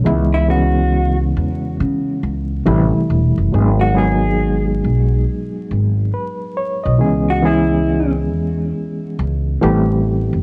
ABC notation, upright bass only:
X:1
M:4/4
L:1/16
Q:"Swing 16ths" 1/4=69
K:C#m
V:1 name="Upright bass" clef=bass
C,,6 E,,2 C,2 C,,2 A,,, z E,,, F,,, | G,,,6 B,,,2 z2 G,,,2 z3 B,,, | C,,6 E,,2 z2 C,,2 A,,,3 F,,, |]